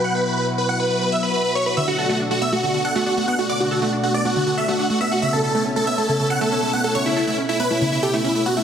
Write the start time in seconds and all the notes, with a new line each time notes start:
Already playing: B2 F#3 E4 F#4
0.04 F#5
0.15 B4
0.26 B4
0.37 B4
0.58 B4
0.69 F#5
0.80 B4
0.91 B4
1.01 B4
1.12 E5
1.23 B4
1.34 B4
1.45 B4
1.55 C#5
1.66 B4
1.77 B2 D3 A3 D4 E5
1.88 D3 F#4
1.98 F#4 A4
2.09 A3 F#4
2.20 D4
2.31 A3 F#4
2.42 B3 E5
2.52 A3 F#4
2.63 D3 F#4
2.74 D3 F#4
2.85 A4 F#5
2.96 A3 F#4
3.06 D4 F#4
3.17 A3 F#4
3.28 B3 F#5
3.39 A3 F#4
3.49 D3 D5
3.60 D3 F#4
3.71 F#4 A4
3.82 A3 F#4
3.93 D4
4.03 A3 F#4
4.14 B3 D5
4.25 A3 F#4
4.36 D3 F#4
4.47 D3 F#4
4.57 A4 E5
4.68 A3 F#4
4.79 D4 F#4
4.90 A3 F#4
5.01 B3 E5
5.11 A3 F#4
5.22 C#3 C#4 E4 E5
5.33 C#3 A4
5.44 A4
5.55 A3 A4
5.65 C#4
5.76 A3 A4
5.87 B3 E5
5.98 A3 A4
6.09 C#3 A4
6.19 C#3 A4
6.30 A4 F#5
6.41 A3 A4
6.52 C#4 A4
6.63 A3 A4
6.73 B3 F#5
6.84 A3 A4
6.95 C#3 C#5
7.06 C#3 E4
7.17 E4 A4
7.27 A3 E4
7.38 C#4
7.49 A3 E4
7.60 B3 B4
7.70 A3 E4
7.81 C#3 E4
7.92 C#3 E4
8.03 G4 A4
8.14 A3 E4
8.24 C#4 E4
8.35 A3 E4
8.46 B3 F#4
8.57 A3 E4